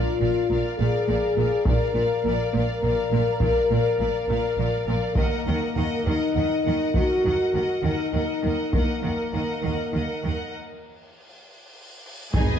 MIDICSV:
0, 0, Header, 1, 13, 480
1, 0, Start_track
1, 0, Tempo, 584226
1, 1369, Time_signature, 12, 3, 24, 8
1, 4252, Tempo, 597610
1, 10209, End_track
2, 0, Start_track
2, 0, Title_t, "Violin section"
2, 0, Program_c, 0, 48
2, 0, Note_on_c, 0, 77, 49
2, 170, Note_off_c, 0, 77, 0
2, 181, Note_on_c, 0, 77, 50
2, 403, Note_off_c, 0, 77, 0
2, 413, Note_on_c, 0, 77, 54
2, 642, Note_off_c, 0, 77, 0
2, 652, Note_on_c, 0, 77, 56
2, 886, Note_off_c, 0, 77, 0
2, 901, Note_on_c, 0, 77, 48
2, 1125, Note_off_c, 0, 77, 0
2, 1135, Note_on_c, 0, 77, 45
2, 1367, Note_off_c, 0, 77, 0
2, 1380, Note_on_c, 0, 77, 55
2, 1603, Note_off_c, 0, 77, 0
2, 1613, Note_on_c, 0, 77, 52
2, 1842, Note_off_c, 0, 77, 0
2, 1852, Note_on_c, 0, 77, 50
2, 2084, Note_off_c, 0, 77, 0
2, 2094, Note_on_c, 0, 77, 48
2, 2328, Note_off_c, 0, 77, 0
2, 2339, Note_on_c, 0, 77, 50
2, 2561, Note_off_c, 0, 77, 0
2, 2571, Note_on_c, 0, 77, 55
2, 2807, Note_off_c, 0, 77, 0
2, 2815, Note_on_c, 0, 77, 53
2, 3049, Note_off_c, 0, 77, 0
2, 3067, Note_on_c, 0, 77, 51
2, 3281, Note_off_c, 0, 77, 0
2, 3291, Note_on_c, 0, 77, 45
2, 3520, Note_off_c, 0, 77, 0
2, 3530, Note_on_c, 0, 77, 59
2, 3757, Note_off_c, 0, 77, 0
2, 3767, Note_on_c, 0, 77, 49
2, 3994, Note_off_c, 0, 77, 0
2, 4004, Note_on_c, 0, 77, 47
2, 4241, Note_on_c, 0, 78, 57
2, 4244, Note_off_c, 0, 77, 0
2, 4468, Note_off_c, 0, 78, 0
2, 4477, Note_on_c, 0, 78, 47
2, 4719, Note_off_c, 0, 78, 0
2, 4729, Note_on_c, 0, 78, 46
2, 4955, Note_off_c, 0, 78, 0
2, 4965, Note_on_c, 0, 78, 47
2, 5189, Note_off_c, 0, 78, 0
2, 5199, Note_on_c, 0, 78, 44
2, 5423, Note_off_c, 0, 78, 0
2, 5433, Note_on_c, 0, 78, 50
2, 5665, Note_off_c, 0, 78, 0
2, 5675, Note_on_c, 0, 78, 42
2, 5901, Note_off_c, 0, 78, 0
2, 5910, Note_on_c, 0, 78, 50
2, 6147, Note_off_c, 0, 78, 0
2, 6158, Note_on_c, 0, 78, 45
2, 6381, Note_off_c, 0, 78, 0
2, 6391, Note_on_c, 0, 78, 50
2, 6615, Note_off_c, 0, 78, 0
2, 6625, Note_on_c, 0, 78, 37
2, 6863, Note_off_c, 0, 78, 0
2, 6873, Note_on_c, 0, 78, 39
2, 7101, Note_off_c, 0, 78, 0
2, 7110, Note_on_c, 0, 78, 46
2, 7340, Note_off_c, 0, 78, 0
2, 7349, Note_on_c, 0, 78, 36
2, 7590, Note_off_c, 0, 78, 0
2, 7599, Note_on_c, 0, 78, 42
2, 7820, Note_off_c, 0, 78, 0
2, 7830, Note_on_c, 0, 78, 40
2, 8068, Note_off_c, 0, 78, 0
2, 8078, Note_on_c, 0, 78, 34
2, 8318, Note_off_c, 0, 78, 0
2, 8327, Note_on_c, 0, 78, 42
2, 8565, Note_off_c, 0, 78, 0
2, 10002, Note_on_c, 0, 80, 65
2, 10209, Note_off_c, 0, 80, 0
2, 10209, End_track
3, 0, Start_track
3, 0, Title_t, "Violin section"
3, 0, Program_c, 1, 48
3, 0, Note_on_c, 1, 74, 53
3, 168, Note_off_c, 1, 74, 0
3, 179, Note_on_c, 1, 74, 50
3, 409, Note_off_c, 1, 74, 0
3, 424, Note_on_c, 1, 74, 52
3, 641, Note_off_c, 1, 74, 0
3, 651, Note_on_c, 1, 74, 60
3, 885, Note_off_c, 1, 74, 0
3, 896, Note_on_c, 1, 74, 49
3, 1127, Note_off_c, 1, 74, 0
3, 1139, Note_on_c, 1, 74, 52
3, 1362, Note_off_c, 1, 74, 0
3, 1372, Note_on_c, 1, 74, 56
3, 1598, Note_off_c, 1, 74, 0
3, 1607, Note_on_c, 1, 74, 47
3, 1843, Note_off_c, 1, 74, 0
3, 1859, Note_on_c, 1, 74, 60
3, 2089, Note_off_c, 1, 74, 0
3, 2102, Note_on_c, 1, 74, 52
3, 2322, Note_off_c, 1, 74, 0
3, 2332, Note_on_c, 1, 74, 53
3, 2567, Note_off_c, 1, 74, 0
3, 2578, Note_on_c, 1, 74, 47
3, 2795, Note_off_c, 1, 74, 0
3, 2805, Note_on_c, 1, 74, 57
3, 3039, Note_off_c, 1, 74, 0
3, 3049, Note_on_c, 1, 74, 55
3, 3276, Note_off_c, 1, 74, 0
3, 3286, Note_on_c, 1, 74, 49
3, 3524, Note_off_c, 1, 74, 0
3, 3535, Note_on_c, 1, 74, 54
3, 3761, Note_off_c, 1, 74, 0
3, 3771, Note_on_c, 1, 74, 51
3, 3994, Note_off_c, 1, 74, 0
3, 4004, Note_on_c, 1, 74, 51
3, 4242, Note_on_c, 1, 75, 55
3, 4244, Note_off_c, 1, 74, 0
3, 4474, Note_off_c, 1, 75, 0
3, 4484, Note_on_c, 1, 75, 46
3, 4710, Note_off_c, 1, 75, 0
3, 4720, Note_on_c, 1, 75, 57
3, 4960, Note_off_c, 1, 75, 0
3, 4969, Note_on_c, 1, 75, 51
3, 5196, Note_off_c, 1, 75, 0
3, 5206, Note_on_c, 1, 75, 47
3, 5439, Note_off_c, 1, 75, 0
3, 5450, Note_on_c, 1, 75, 44
3, 5680, Note_off_c, 1, 75, 0
3, 5693, Note_on_c, 1, 75, 48
3, 5920, Note_off_c, 1, 75, 0
3, 5932, Note_on_c, 1, 75, 42
3, 6152, Note_off_c, 1, 75, 0
3, 6161, Note_on_c, 1, 75, 43
3, 6388, Note_off_c, 1, 75, 0
3, 6397, Note_on_c, 1, 75, 49
3, 6630, Note_off_c, 1, 75, 0
3, 6639, Note_on_c, 1, 75, 42
3, 6872, Note_off_c, 1, 75, 0
3, 6884, Note_on_c, 1, 75, 46
3, 7115, Note_off_c, 1, 75, 0
3, 7125, Note_on_c, 1, 75, 49
3, 7358, Note_off_c, 1, 75, 0
3, 7370, Note_on_c, 1, 75, 37
3, 7590, Note_off_c, 1, 75, 0
3, 7600, Note_on_c, 1, 75, 43
3, 7833, Note_off_c, 1, 75, 0
3, 7842, Note_on_c, 1, 75, 38
3, 8074, Note_off_c, 1, 75, 0
3, 8083, Note_on_c, 1, 75, 37
3, 8319, Note_off_c, 1, 75, 0
3, 8328, Note_on_c, 1, 75, 36
3, 8565, Note_off_c, 1, 75, 0
3, 10014, Note_on_c, 1, 68, 53
3, 10015, Note_on_c, 1, 63, 54
3, 10209, Note_off_c, 1, 63, 0
3, 10209, Note_off_c, 1, 68, 0
3, 10209, End_track
4, 0, Start_track
4, 0, Title_t, "Viola section"
4, 0, Program_c, 2, 48
4, 0, Note_on_c, 2, 70, 52
4, 164, Note_off_c, 2, 70, 0
4, 177, Note_on_c, 2, 70, 44
4, 404, Note_off_c, 2, 70, 0
4, 414, Note_on_c, 2, 70, 49
4, 646, Note_off_c, 2, 70, 0
4, 660, Note_on_c, 2, 70, 53
4, 886, Note_off_c, 2, 70, 0
4, 896, Note_on_c, 2, 70, 55
4, 1128, Note_off_c, 2, 70, 0
4, 1148, Note_on_c, 2, 70, 55
4, 1374, Note_off_c, 2, 70, 0
4, 1385, Note_on_c, 2, 70, 65
4, 1608, Note_off_c, 2, 70, 0
4, 1618, Note_on_c, 2, 70, 47
4, 1849, Note_off_c, 2, 70, 0
4, 1863, Note_on_c, 2, 70, 55
4, 2086, Note_off_c, 2, 70, 0
4, 2096, Note_on_c, 2, 70, 50
4, 2314, Note_off_c, 2, 70, 0
4, 2324, Note_on_c, 2, 70, 50
4, 2563, Note_off_c, 2, 70, 0
4, 2579, Note_on_c, 2, 70, 46
4, 2808, Note_off_c, 2, 70, 0
4, 2817, Note_on_c, 2, 70, 51
4, 3047, Note_off_c, 2, 70, 0
4, 3057, Note_on_c, 2, 70, 51
4, 3275, Note_off_c, 2, 70, 0
4, 3285, Note_on_c, 2, 70, 45
4, 3516, Note_off_c, 2, 70, 0
4, 3526, Note_on_c, 2, 70, 59
4, 3764, Note_off_c, 2, 70, 0
4, 3774, Note_on_c, 2, 70, 56
4, 3995, Note_off_c, 2, 70, 0
4, 4004, Note_on_c, 2, 70, 53
4, 4232, Note_off_c, 2, 70, 0
4, 4241, Note_on_c, 2, 70, 64
4, 4480, Note_off_c, 2, 70, 0
4, 4489, Note_on_c, 2, 70, 51
4, 4718, Note_off_c, 2, 70, 0
4, 4728, Note_on_c, 2, 70, 47
4, 4957, Note_off_c, 2, 70, 0
4, 4967, Note_on_c, 2, 70, 52
4, 5194, Note_off_c, 2, 70, 0
4, 5204, Note_on_c, 2, 70, 41
4, 5425, Note_off_c, 2, 70, 0
4, 5435, Note_on_c, 2, 70, 41
4, 5667, Note_off_c, 2, 70, 0
4, 5676, Note_on_c, 2, 70, 45
4, 5902, Note_off_c, 2, 70, 0
4, 5911, Note_on_c, 2, 70, 40
4, 6138, Note_off_c, 2, 70, 0
4, 6148, Note_on_c, 2, 70, 40
4, 6384, Note_off_c, 2, 70, 0
4, 6396, Note_on_c, 2, 70, 51
4, 6629, Note_off_c, 2, 70, 0
4, 6638, Note_on_c, 2, 70, 49
4, 6872, Note_off_c, 2, 70, 0
4, 6881, Note_on_c, 2, 70, 38
4, 7109, Note_off_c, 2, 70, 0
4, 7119, Note_on_c, 2, 70, 47
4, 7355, Note_off_c, 2, 70, 0
4, 7368, Note_on_c, 2, 70, 44
4, 7599, Note_off_c, 2, 70, 0
4, 7609, Note_on_c, 2, 70, 42
4, 7838, Note_off_c, 2, 70, 0
4, 7847, Note_on_c, 2, 70, 43
4, 8076, Note_off_c, 2, 70, 0
4, 8086, Note_on_c, 2, 70, 37
4, 8316, Note_off_c, 2, 70, 0
4, 8326, Note_on_c, 2, 70, 35
4, 8564, Note_off_c, 2, 70, 0
4, 10014, Note_on_c, 2, 71, 65
4, 10209, Note_off_c, 2, 71, 0
4, 10209, End_track
5, 0, Start_track
5, 0, Title_t, "String section"
5, 0, Program_c, 3, 48
5, 10014, Note_on_c, 3, 59, 57
5, 10014, Note_on_c, 3, 68, 58
5, 10016, Note_on_c, 3, 63, 54
5, 10020, Note_on_c, 3, 75, 53
5, 10209, Note_off_c, 3, 59, 0
5, 10209, Note_off_c, 3, 63, 0
5, 10209, Note_off_c, 3, 68, 0
5, 10209, Note_off_c, 3, 75, 0
5, 10209, End_track
6, 0, Start_track
6, 0, Title_t, "French horn section"
6, 0, Program_c, 4, 60
6, 0, Note_on_c, 4, 65, 74
6, 501, Note_off_c, 4, 65, 0
6, 641, Note_on_c, 4, 68, 75
6, 1350, Note_off_c, 4, 68, 0
6, 1364, Note_on_c, 4, 70, 68
6, 2071, Note_off_c, 4, 70, 0
6, 2081, Note_on_c, 4, 70, 87
6, 4215, Note_off_c, 4, 70, 0
6, 4234, Note_on_c, 4, 58, 70
6, 4962, Note_off_c, 4, 58, 0
6, 4968, Note_on_c, 4, 63, 77
6, 5681, Note_off_c, 4, 63, 0
6, 5681, Note_on_c, 4, 66, 80
6, 6388, Note_on_c, 4, 63, 68
6, 6393, Note_off_c, 4, 66, 0
6, 7099, Note_off_c, 4, 63, 0
6, 7118, Note_on_c, 4, 58, 63
6, 8570, Note_off_c, 4, 58, 0
6, 10003, Note_on_c, 4, 56, 60
6, 10209, Note_off_c, 4, 56, 0
6, 10209, End_track
7, 0, Start_track
7, 0, Title_t, "Cello section"
7, 0, Program_c, 5, 48
7, 172, Note_on_c, 5, 46, 58
7, 238, Note_off_c, 5, 46, 0
7, 407, Note_on_c, 5, 46, 50
7, 473, Note_off_c, 5, 46, 0
7, 656, Note_on_c, 5, 46, 56
7, 722, Note_off_c, 5, 46, 0
7, 892, Note_on_c, 5, 46, 59
7, 958, Note_off_c, 5, 46, 0
7, 1134, Note_on_c, 5, 46, 58
7, 1200, Note_off_c, 5, 46, 0
7, 1367, Note_on_c, 5, 46, 55
7, 1433, Note_off_c, 5, 46, 0
7, 1595, Note_on_c, 5, 46, 55
7, 1661, Note_off_c, 5, 46, 0
7, 1848, Note_on_c, 5, 46, 56
7, 1914, Note_off_c, 5, 46, 0
7, 2086, Note_on_c, 5, 46, 64
7, 2151, Note_off_c, 5, 46, 0
7, 2327, Note_on_c, 5, 46, 55
7, 2393, Note_off_c, 5, 46, 0
7, 2568, Note_on_c, 5, 46, 64
7, 2634, Note_off_c, 5, 46, 0
7, 2801, Note_on_c, 5, 46, 60
7, 2866, Note_off_c, 5, 46, 0
7, 3049, Note_on_c, 5, 46, 52
7, 3115, Note_off_c, 5, 46, 0
7, 3288, Note_on_c, 5, 46, 49
7, 3354, Note_off_c, 5, 46, 0
7, 3535, Note_on_c, 5, 46, 62
7, 3601, Note_off_c, 5, 46, 0
7, 3767, Note_on_c, 5, 46, 57
7, 3833, Note_off_c, 5, 46, 0
7, 4008, Note_on_c, 5, 46, 61
7, 4074, Note_off_c, 5, 46, 0
7, 4249, Note_on_c, 5, 51, 57
7, 4314, Note_off_c, 5, 51, 0
7, 4497, Note_on_c, 5, 51, 52
7, 4561, Note_off_c, 5, 51, 0
7, 4726, Note_on_c, 5, 51, 54
7, 4790, Note_off_c, 5, 51, 0
7, 4974, Note_on_c, 5, 51, 59
7, 5038, Note_off_c, 5, 51, 0
7, 5209, Note_on_c, 5, 51, 49
7, 5273, Note_off_c, 5, 51, 0
7, 5450, Note_on_c, 5, 51, 53
7, 5514, Note_off_c, 5, 51, 0
7, 5680, Note_on_c, 5, 51, 58
7, 5745, Note_off_c, 5, 51, 0
7, 5922, Note_on_c, 5, 51, 53
7, 5986, Note_off_c, 5, 51, 0
7, 6157, Note_on_c, 5, 51, 41
7, 6221, Note_off_c, 5, 51, 0
7, 6385, Note_on_c, 5, 51, 52
7, 6449, Note_off_c, 5, 51, 0
7, 6626, Note_on_c, 5, 51, 44
7, 6691, Note_off_c, 5, 51, 0
7, 6870, Note_on_c, 5, 51, 49
7, 6934, Note_off_c, 5, 51, 0
7, 7106, Note_on_c, 5, 51, 50
7, 7170, Note_off_c, 5, 51, 0
7, 7344, Note_on_c, 5, 51, 47
7, 7408, Note_off_c, 5, 51, 0
7, 7590, Note_on_c, 5, 51, 40
7, 7654, Note_off_c, 5, 51, 0
7, 7830, Note_on_c, 5, 51, 49
7, 7894, Note_off_c, 5, 51, 0
7, 8066, Note_on_c, 5, 51, 39
7, 8131, Note_off_c, 5, 51, 0
7, 8316, Note_on_c, 5, 51, 45
7, 8380, Note_off_c, 5, 51, 0
7, 10012, Note_on_c, 5, 44, 56
7, 10209, Note_off_c, 5, 44, 0
7, 10209, End_track
8, 0, Start_track
8, 0, Title_t, "Timpani"
8, 0, Program_c, 6, 47
8, 10014, Note_on_c, 6, 44, 67
8, 10209, Note_off_c, 6, 44, 0
8, 10209, End_track
9, 0, Start_track
9, 0, Title_t, "Double bass section"
9, 0, Program_c, 7, 48
9, 170, Note_on_c, 7, 34, 57
9, 236, Note_off_c, 7, 34, 0
9, 409, Note_on_c, 7, 34, 49
9, 475, Note_off_c, 7, 34, 0
9, 652, Note_on_c, 7, 34, 64
9, 718, Note_off_c, 7, 34, 0
9, 894, Note_on_c, 7, 34, 52
9, 960, Note_off_c, 7, 34, 0
9, 1130, Note_on_c, 7, 34, 61
9, 1196, Note_off_c, 7, 34, 0
9, 1371, Note_on_c, 7, 34, 62
9, 1437, Note_off_c, 7, 34, 0
9, 1603, Note_on_c, 7, 34, 48
9, 1669, Note_off_c, 7, 34, 0
9, 1852, Note_on_c, 7, 34, 51
9, 1918, Note_off_c, 7, 34, 0
9, 2088, Note_on_c, 7, 34, 50
9, 2154, Note_off_c, 7, 34, 0
9, 2325, Note_on_c, 7, 34, 51
9, 2391, Note_off_c, 7, 34, 0
9, 2558, Note_on_c, 7, 34, 53
9, 2624, Note_off_c, 7, 34, 0
9, 2808, Note_on_c, 7, 34, 54
9, 2874, Note_off_c, 7, 34, 0
9, 3043, Note_on_c, 7, 34, 57
9, 3109, Note_off_c, 7, 34, 0
9, 3278, Note_on_c, 7, 34, 51
9, 3344, Note_off_c, 7, 34, 0
9, 3518, Note_on_c, 7, 34, 62
9, 3584, Note_off_c, 7, 34, 0
9, 3752, Note_on_c, 7, 34, 57
9, 3818, Note_off_c, 7, 34, 0
9, 4001, Note_on_c, 7, 34, 54
9, 4067, Note_off_c, 7, 34, 0
9, 4242, Note_on_c, 7, 39, 60
9, 4307, Note_off_c, 7, 39, 0
9, 4477, Note_on_c, 7, 39, 54
9, 4541, Note_off_c, 7, 39, 0
9, 4724, Note_on_c, 7, 39, 45
9, 4788, Note_off_c, 7, 39, 0
9, 4961, Note_on_c, 7, 39, 56
9, 5026, Note_off_c, 7, 39, 0
9, 5197, Note_on_c, 7, 39, 51
9, 5261, Note_off_c, 7, 39, 0
9, 5441, Note_on_c, 7, 39, 47
9, 5505, Note_off_c, 7, 39, 0
9, 5676, Note_on_c, 7, 39, 51
9, 5741, Note_off_c, 7, 39, 0
9, 5918, Note_on_c, 7, 39, 45
9, 5982, Note_off_c, 7, 39, 0
9, 6149, Note_on_c, 7, 39, 45
9, 6213, Note_off_c, 7, 39, 0
9, 6389, Note_on_c, 7, 39, 52
9, 6453, Note_off_c, 7, 39, 0
9, 6632, Note_on_c, 7, 39, 46
9, 6696, Note_off_c, 7, 39, 0
9, 6885, Note_on_c, 7, 39, 42
9, 6950, Note_off_c, 7, 39, 0
9, 7124, Note_on_c, 7, 39, 43
9, 7188, Note_off_c, 7, 39, 0
9, 7361, Note_on_c, 7, 39, 38
9, 7425, Note_off_c, 7, 39, 0
9, 7602, Note_on_c, 7, 39, 38
9, 7667, Note_off_c, 7, 39, 0
9, 7845, Note_on_c, 7, 39, 44
9, 7909, Note_off_c, 7, 39, 0
9, 8091, Note_on_c, 7, 39, 42
9, 8155, Note_off_c, 7, 39, 0
9, 8334, Note_on_c, 7, 39, 41
9, 8399, Note_off_c, 7, 39, 0
9, 10014, Note_on_c, 7, 32, 59
9, 10079, Note_off_c, 7, 32, 0
9, 10209, End_track
10, 0, Start_track
10, 0, Title_t, "Tuba"
10, 0, Program_c, 8, 58
10, 10017, Note_on_c, 8, 32, 50
10, 10112, Note_off_c, 8, 32, 0
10, 10209, End_track
11, 0, Start_track
11, 0, Title_t, "Cymbal swell"
11, 0, Program_c, 10, 119
11, 7112, Note_on_c, 10, 60, 51
11, 10013, Note_off_c, 10, 60, 0
11, 10209, End_track
12, 0, Start_track
12, 0, Title_t, "Sub drop"
12, 0, Program_c, 11, 103
12, 10011, Note_on_c, 11, 60, 68
12, 10209, Note_off_c, 11, 60, 0
12, 10209, End_track
13, 0, Start_track
13, 0, Title_t, "Taiko and cinematic ensemble drums"
13, 1359, Note_on_c, 9, 41, 82
13, 1441, Note_off_c, 9, 41, 0
13, 2795, Note_on_c, 9, 41, 77
13, 2877, Note_off_c, 9, 41, 0
13, 4235, Note_on_c, 9, 41, 82
13, 4316, Note_off_c, 9, 41, 0
13, 5671, Note_on_c, 9, 41, 71
13, 5751, Note_off_c, 9, 41, 0
13, 7108, Note_on_c, 9, 41, 76
13, 7188, Note_off_c, 9, 41, 0
13, 10004, Note_on_c, 9, 41, 82
13, 10085, Note_off_c, 9, 41, 0
13, 10209, End_track
0, 0, End_of_file